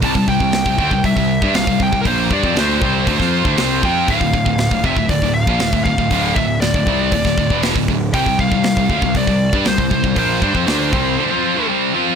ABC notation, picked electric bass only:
X:1
M:4/4
L:1/16
Q:1/4=118
K:Cmix
V:1 name="Picked electric bass" clef=bass
C,, C,, C,, C,,2 C,, D,, C,, C,, C,,2 G,, C,, C,, C,, C,, | B,,,2 G,, F,, D,,2 C,,2 D,, F,,2 D,, C,,2 F,,2 | D,,, D,,, D,,, D,,,2 D,,, F,,, D,,, D,,, D,,,2 B,,, D,,, D,,, D,,, D,,, | D,,,2 D,,,2 D,,, D,,, C,,2 D,,, D,,, D,,, E,,,2 D,,, D,,,2 |
C,, C,, C,, C,,2 C,, D,, C,, C,, C,,2 G,, C,, C,, C,, C,, | B,,,2 G,, F,, D,,2 C,,2 z8 |]